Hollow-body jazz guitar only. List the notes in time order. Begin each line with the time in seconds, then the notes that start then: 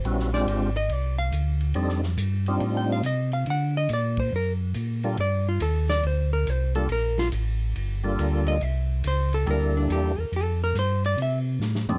Already playing: C5
0.34 D5
0.77 D#5
0.93 D5
1.19 F5
2.77 G5
2.92 F5
3.06 D#5
3.33 F5
3.50 F#5
3.77 D#5
3.93 D5
4.20 C5
4.36 A#4
5.21 D5
5.49 F4
5.62 A4
5.90 D5
6.07 C5
6.33 A#4
6.50 C5
6.76 A4
6.92 A#4
7.19 F4
8.48 D#5
8.63 E5
9.07 C5
9.34 A4
9.51 A#4
9.77 D4
9.92 G4
10.20 A#4
10.36 A4
10.64 A#4
10.79 C5
11.06 D5
11.22 E5